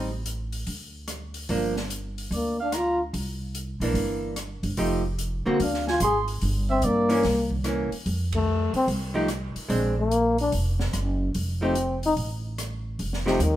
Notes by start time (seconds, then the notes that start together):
Already playing: A1
0.26 closed hi-hat
0.52 open hi-hat
0.67 D2, open hi-hat
1.08 cross-stick, closed hi-hat
1.34 open hi-hat
1.49 G1 F3 A#3 D4, open hi-hat
1.76 snare
1.90 closed hi-hat
2.18 open hi-hat
2.31 D2 D5, open hi-hat
2.35 A#3
2.59 D4 F5
2.72 A#5, cross-stick, closed hi-hat
2.76 F4
3.13 C2, open hi-hat
3.55 closed hi-hat
3.80 A#1 E3 A#3 D4, open hi-hat
3.94 G1, open hi-hat
4.36 cross-stick, closed hi-hat
4.63 G1, open hi-hat
4.77 F1 F3 A3 D#4 G4, open hi-hat
5.19 closed hi-hat
5.46 D3 A#3 C4 F#4, muted upright bass stroke
5.60 D2 D4 F5, open hi-hat
5.74 snare
5.87 F4 G#5, snare
6.00 G#1 G#4 C6, cross-stick, closed hi-hat
6.28 open hi-hat
6.41 G1, open hi-hat
6.70 C4 E5
6.82 G2 A#3 D5, closed hi-hat
7.09 E3 A#3 C#4, open hi-hat
7.23 C2, snare, open hi-hat
7.51 kick
7.64 E3 A#3 C#4, cross-stick, closed hi-hat
7.91 muted upright bass stroke, open hi-hat
8.06 F2, open hi-hat
8.33 A3, kick, ride
8.73 D#2 C4, open hi-hat
8.87 C2, open hi-hat
9.14 F3 A3 D#4 G4
9.28 cross-stick, closed hi-hat
9.56 muted upright bass stroke, open hi-hat
9.69 A#1 G#3 C4 D4, open hi-hat
10.00 A#3
10.11 closed hi-hat
10.38 D4, open hi-hat
10.52 F1, open hi-hat
10.80 snare
10.93 F#1, cross-stick, closed hi-hat
11.35 F1, open hi-hat
11.61 F3 A3 C4 D#4 G4
11.75 closed hi-hat
12.03 D#4, open hi-hat
12.16 A1, open hi-hat
12.58 cross-stick, closed hi-hat
12.99 F1, open hi-hat
13.13 snare
13.26 C3 F3 A3 D#4 G4, snare
13.40 D#2 D#3, closed hi-hat